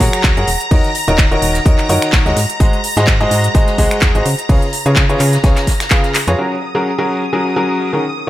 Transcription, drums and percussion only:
0.00 kick medium
0.00 snare soft
0.00 closed hi-hat medium
0.00 open hi-hat loud
0.13 finger snap medium
0.13 closed hi-hat soft
0.23 kick loud
0.23 snare loud
0.23 clap loud
0.23 closed hi-hat soft
0.23 closed hi-hat medium
0.37 closed hi-hat soft
0.47 closed hi-hat medium
0.47 open hi-hat loud
0.61 closed hi-hat medium
0.71 kick loud
0.71 closed hi-hat medium
0.71 open hi-hat medium
0.84 closed hi-hat soft
0.95 closed hi-hat medium
0.95 open hi-hat loud
1.08 closed hi-hat soft
1.18 kick loud
1.18 snare loud
1.18 clap loud
1.18 closed hi-hat medium
1.32 closed hi-hat soft
1.42 closed hi-hat medium
1.42 open hi-hat loud
1.54 snare medium
1.54 closed hi-hat medium
1.66 kick loud
1.66 closed hi-hat medium
1.78 clap soft
1.78 closed hi-hat soft
1.89 closed hi-hat medium
1.89 open hi-hat loud
2.02 finger snap medium
2.02 closed hi-hat medium
2.12 kick loud
2.12 snare loud
2.12 clap loud
2.12 closed hi-hat medium
2.26 snare soft
2.26 closed hi-hat soft
2.36 snare soft
2.36 closed hi-hat medium
2.36 open hi-hat loud
2.50 closed hi-hat medium
2.60 kick loud
2.60 closed hi-hat medium
2.73 closed hi-hat soft
2.84 closed hi-hat medium
2.84 open hi-hat loud
2.97 snare soft
2.97 closed hi-hat medium
3.07 kick loud
3.07 snare loud
3.07 clap loud
3.07 closed hi-hat medium
3.21 closed hi-hat soft
3.31 closed hi-hat medium
3.31 open hi-hat loud
3.44 closed hi-hat medium
3.55 kick loud
3.55 closed hi-hat medium
3.67 snare medium
3.67 closed hi-hat soft
3.78 kick medium
3.78 snare soft
3.78 closed hi-hat medium
3.78 open hi-hat loud
3.91 finger snap medium
3.91 closed hi-hat medium
4.01 kick loud
4.01 snare loud
4.01 clap loud
4.01 closed hi-hat medium
4.15 closed hi-hat soft
4.25 closed hi-hat medium
4.25 open hi-hat loud
4.39 closed hi-hat medium
4.49 kick loud
4.49 closed hi-hat medium
4.49 open hi-hat medium
4.62 closed hi-hat soft
4.73 closed hi-hat medium
4.73 open hi-hat loud
4.86 closed hi-hat medium
4.96 kick loud
4.96 snare loud
4.96 clap loud
4.96 closed hi-hat medium
5.09 closed hi-hat soft
5.19 clap soft
5.19 closed hi-hat medium
5.19 open hi-hat loud
5.33 snare soft
5.33 closed hi-hat medium
5.44 kick loud
5.44 snare loud
5.44 closed hi-hat medium
5.56 snare loud
5.56 clap soft
5.56 closed hi-hat medium
5.56 closed hi-hat soft
5.67 kick medium
5.67 snare loud
5.67 closed hi-hat medium
5.67 open hi-hat loud
5.80 finger snap medium
5.80 snare loud
5.80 closed hi-hat medium
5.90 kick loud
5.90 snare loud
5.90 clap loud
5.90 closed hi-hat medium
6.04 snare medium
6.04 closed hi-hat soft
6.14 snare soft
6.14 clap medium
6.14 closed hi-hat medium
6.14 open hi-hat loud
6.28 closed hi-hat medium
6.38 closed hi-hat medium
6.62 closed hi-hat medium
6.75 snare soft
6.85 closed hi-hat medium
7.09 closed hi-hat medium
7.45 snare soft
7.56 snare soft
7.56 closed hi-hat medium
7.80 closed hi-hat medium
8.03 closed hi-hat medium

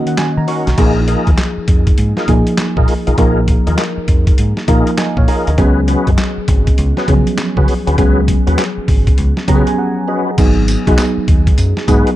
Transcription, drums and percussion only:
0.07 closed hi-hat medium
0.17 snare loud
0.17 clap medium
0.17 closed hi-hat medium
0.48 open hi-hat medium
0.67 snare medium
0.67 closed hi-hat medium
0.78 kick loud
0.78 closed hi-hat medium
0.78 crash loud
1.08 closed hi-hat medium
1.27 kick medium
1.27 closed hi-hat soft
1.38 snare loud
1.38 clap medium
1.38 closed hi-hat medium
1.68 kick medium
1.68 closed hi-hat medium
1.87 kick loud
1.87 closed hi-hat medium
1.98 closed hi-hat medium
2.17 snare medium
2.28 kick medium
2.28 closed hi-hat medium
2.47 closed hi-hat medium
2.57 snare loud
2.57 clap medium
2.57 closed hi-hat medium
2.77 kick medium
2.88 open hi-hat medium
3.07 closed hi-hat medium
3.18 kick loud
3.18 closed hi-hat medium
3.48 kick medium
3.48 closed hi-hat medium
3.67 closed hi-hat soft
3.78 snare loud
3.78 clap medium
3.78 closed hi-hat medium
4.08 kick loud
4.08 closed hi-hat medium
4.27 kick loud
4.27 closed hi-hat medium
4.38 closed hi-hat medium
4.57 snare medium
4.68 kick loud
4.68 closed hi-hat medium
4.87 closed hi-hat medium
4.98 snare loud
4.98 clap medium
4.98 closed hi-hat medium
5.17 kick loud
5.28 open hi-hat medium
5.47 closed hi-hat medium
5.58 kick loud
5.58 closed hi-hat medium
5.88 closed hi-hat medium
6.07 kick medium
6.07 closed hi-hat soft
6.18 snare loud
6.18 clap medium
6.18 closed hi-hat medium
6.48 kick loud
6.48 closed hi-hat medium
6.67 kick medium
6.67 closed hi-hat medium
6.78 closed hi-hat medium
6.97 snare medium
7.08 kick loud
7.08 closed hi-hat medium
7.27 closed hi-hat medium
7.38 snare loud
7.38 clap medium
7.38 closed hi-hat medium
7.57 kick medium
7.68 open hi-hat medium
7.87 closed hi-hat medium
7.98 kick loud
7.98 closed hi-hat medium
8.28 kick loud
8.28 closed hi-hat medium
8.47 closed hi-hat medium
8.58 snare loud
8.58 clap loud
8.58 closed hi-hat medium
8.88 kick loud
8.88 open hi-hat medium
9.07 kick loud
9.07 closed hi-hat medium
9.18 closed hi-hat medium
9.37 snare medium
9.48 kick loud
9.48 closed hi-hat medium
9.67 closed hi-hat medium
10.38 kick loud
10.38 closed hi-hat medium
10.38 crash loud
10.38 tambourine medium
10.68 closed hi-hat medium
10.68 tambourine medium
10.87 kick medium
10.87 closed hi-hat medium
10.98 snare loud
10.98 clap loud
10.98 closed hi-hat medium
10.98 tambourine medium
11.28 kick loud
11.28 closed hi-hat medium
11.47 kick loud
11.47 closed hi-hat medium
11.58 closed hi-hat medium
11.58 tambourine medium
11.77 snare medium
11.88 kick loud
11.88 closed hi-hat medium
11.88 tambourine medium
12.07 closed hi-hat medium

